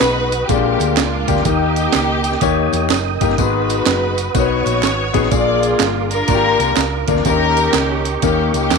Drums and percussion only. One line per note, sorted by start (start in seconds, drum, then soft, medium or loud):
0.01 snare loud
0.01 clap loud
0.01 closed hi-hat medium
0.01 tambourine loud
0.32 closed hi-hat medium
0.32 tambourine soft
0.49 kick loud
0.49 closed hi-hat loud
0.49 tambourine medium
0.80 closed hi-hat medium
0.80 tambourine medium
0.97 snare loud
0.97 clap loud
0.97 closed hi-hat medium
0.97 tambourine medium
1.28 kick medium
1.28 closed hi-hat medium
1.28 tambourine medium
1.37 snare soft
1.45 kick loud
1.45 closed hi-hat medium
1.45 tambourine medium
1.76 closed hi-hat medium
1.76 tambourine medium
1.93 snare loud
1.93 clap medium
1.93 closed hi-hat medium
1.93 tambourine medium
2.24 closed hi-hat medium
2.24 tambourine soft
2.32 snare soft
2.41 kick loud
2.41 closed hi-hat loud
2.41 tambourine medium
2.73 closed hi-hat medium
2.73 tambourine medium
2.90 snare loud
2.90 clap medium
2.90 closed hi-hat medium
2.90 tambourine medium
3.21 kick loud
3.21 closed hi-hat medium
3.21 tambourine medium
3.30 snare soft
3.38 kick loud
3.38 closed hi-hat medium
3.38 tambourine medium
3.69 closed hi-hat medium
3.69 tambourine medium
3.86 snare loud
3.86 clap medium
3.86 closed hi-hat medium
3.86 tambourine medium
4.18 closed hi-hat medium
4.18 tambourine medium
4.35 kick loud
4.35 closed hi-hat loud
4.35 tambourine medium
4.66 closed hi-hat medium
4.66 tambourine medium
4.83 snare loud
4.83 clap medium
4.83 closed hi-hat medium
4.83 tambourine medium
5.14 kick medium
5.14 closed hi-hat medium
5.14 tambourine medium
5.23 snare soft
5.31 kick loud
5.31 closed hi-hat medium
5.31 tambourine medium
5.63 closed hi-hat medium
5.63 tambourine medium
5.79 snare loud
5.79 clap loud
5.79 closed hi-hat medium
5.79 tambourine medium
6.11 closed hi-hat medium
6.11 tambourine medium
6.28 kick loud
6.28 closed hi-hat loud
6.28 tambourine medium
6.60 closed hi-hat medium
6.60 tambourine medium
6.76 snare loud
6.76 clap medium
6.76 closed hi-hat medium
6.76 tambourine medium
7.08 kick medium
7.08 closed hi-hat medium
7.08 tambourine medium
7.17 snare soft
7.25 kick loud
7.25 closed hi-hat medium
7.25 tambourine medium
7.57 closed hi-hat medium
7.57 tambourine medium
7.73 snare loud
7.73 clap medium
7.73 closed hi-hat medium
7.73 tambourine loud
8.05 closed hi-hat medium
8.05 tambourine soft
8.22 kick loud
8.22 closed hi-hat loud
8.22 tambourine medium
8.54 closed hi-hat medium
8.54 tambourine medium
8.71 snare loud
8.71 clap medium
8.71 closed hi-hat medium
8.71 tambourine medium